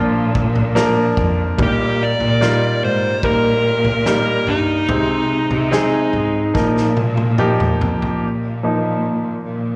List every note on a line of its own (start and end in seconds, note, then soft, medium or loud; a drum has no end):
0.00 1.13 A#2 loud
0.00 0.75 F3 medium
0.00 0.75 A#3 medium
0.00 0.76 D4 medium
0.00 0.72 F4 medium
0.00 1.60 G4 medium
0.00 0.76 A#4 medium
0.35 kick medium
0.56 floor tom medium
0.75 1.53 F3 medium
0.75 1.54 A#3 medium
0.75 1.54 D4 medium
0.75 1.54 A#4 loud
0.75 snare medium
1.17 1.55 F2 medium
1.17 kick medium
1.58 2.78 A#2 medium
1.58 2.16 A#2 medium
1.58 2.36 G3 medium
1.58 2.36 A#3 medium
1.58 2.36 D#4 medium
1.58 2.37 A#4 medium
1.58 kick loud
1.58 floor tom loud
1.63 2.03 G4 loud
2.03 2.84 D5 loud
2.20 2.58 A#2 medium
2.20 floor tom medium
2.41 3.19 G3 medium
2.41 3.19 A#3 medium
2.41 3.19 D#4 medium
2.41 3.19 F4 medium
2.41 snare medium
2.82 3.20 G#2 medium
2.82 3.25 C5 loud
3.23 4.43 A#2 loud
3.23 4.01 G3 medium
3.23 4.01 A#3 medium
3.23 4.01 D#4 medium
3.23 4.01 A#4 medium
3.23 4.06 A#4 loud
3.23 kick medium
3.85 floor tom medium
4.06 4.84 G3 medium
4.06 4.84 A#3 medium
4.06 4.84 D#4 medium
4.06 4.85 A#4 medium
4.06 4.49 A#4 loud
4.06 snare medium
4.46 4.85 G2 medium
4.46 6.93 D#4 medium
4.46 floor tom medium
4.88 5.46 C3 medium
4.88 6.09 C3 medium
4.88 5.67 G#3 medium
4.88 5.67 C4 medium
4.88 5.67 D#4 medium
4.88 5.68 C5 medium
4.88 floor tom loud
5.49 5.88 C3 medium
5.49 floor tom medium
5.71 6.50 G#3 medium
5.71 6.50 C4 medium
5.71 6.50 D#4 medium
5.71 6.51 G#4 loud
5.71 snare medium
6.12 6.51 G#2 medium
6.12 floor tom medium
6.54 7.77 A#2 medium
6.54 7.34 F3 medium
6.54 7.34 A#3 medium
6.54 7.35 D#4 medium
6.54 7.35 A#4 medium
6.54 kick medium
6.54 snare soft
6.77 snare soft
6.97 high tom medium
7.17 high tom medium
7.38 8.18 F3 medium
7.38 8.19 A#3 medium
7.38 8.18 D#4 medium
7.38 8.19 G4 loud
7.38 mid tom medium
7.60 mid tom medium
7.80 8.19 F2 medium
7.80 floor tom medium
8.02 floor tom medium
8.22 9.43 A#2 medium
8.63 9.76 F3 soft
8.63 9.76 A#3 soft
8.63 9.76 D#4 medium
9.47 9.76 A#2 medium